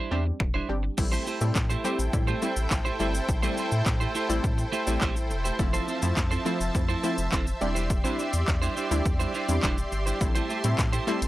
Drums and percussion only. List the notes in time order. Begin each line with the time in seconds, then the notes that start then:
0.40 finger snap, kick
0.98 kick, crash, shaker
1.12 shaker
1.27 shaker
1.41 shaker
1.56 kick, snare, clap, shaker
1.70 shaker
1.85 shaker
1.99 shaker
2.13 kick, shaker
2.28 shaker
2.42 shaker
2.56 shaker
2.71 kick, snare, clap, shaker
2.86 shaker
3.00 shaker
3.14 shaker
3.29 kick, shaker
3.43 shaker
3.58 shaker
3.72 shaker
3.86 kick, snare, clap, shaker
4.01 shaker
4.15 shaker
4.30 shaker
4.44 kick, shaker
4.58 shaker
4.73 shaker
4.87 shaker
5.01 kick, snare, clap, shaker
5.16 shaker
5.31 shaker
5.45 shaker
5.59 kick, shaker
5.74 shaker
5.88 shaker
6.02 shaker
6.17 kick, snare, clap, shaker
6.31 shaker
6.46 shaker
6.61 shaker
6.75 kick, shaker
6.89 shaker
7.04 shaker
7.18 shaker
7.32 kick, snare, clap, shaker
7.47 shaker
7.61 shaker
7.76 shaker
7.90 kick, shaker
8.05 shaker
8.19 shaker
8.33 shaker
8.48 kick, snare, clap, shaker
8.62 shaker
8.77 shaker
8.91 shaker
9.06 kick, shaker
9.20 shaker
9.34 shaker
9.49 shaker
9.63 kick, snare, clap, shaker
9.78 shaker
9.92 shaker
10.07 shaker
10.21 kick, shaker
10.36 closed hi-hat, shaker
10.50 shaker
10.64 closed hi-hat, shaker
10.79 kick, snare, clap, shaker
10.93 closed hi-hat, shaker
11.07 shaker
11.22 closed hi-hat, shaker